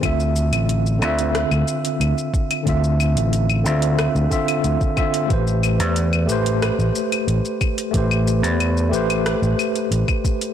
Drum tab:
HH |x--xx--xx--xx--x|x--xx--xx--xx--x|x--xx--xx--xx--x|x--xx--xx--xx--x|
SH |xxxxxxxxxxxxxxxx|xxxxxxxxxxxxxxxx|xxxxxxxxxxxxxxxx|xxxxxxxxxxxxxxxx|
CL |x--x--x--x--x--x|--x--x--x--x--x-|--x--x--x--x--x-|-x--x--x--x--x--|
SD |--------r-------|--------r-------|--------r-------|--------r-------|
BD |o-------------o-|o---------o--oo-|o-------------o-|o------------oo-|